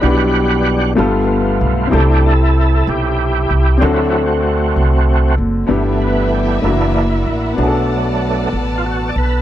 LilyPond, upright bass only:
\new Staff \with { instrumentName = "Upright bass" } { \clef bass \time 6/8 \key g \major \tempo 4. = 64 b,,4. g,,4 b,,8 | c,4. b,,4 c,8 | d,4. c,4 fis,,8 | g,,4. fis,,4 a,,8 |
b,,4. a,,4 b,,8 | }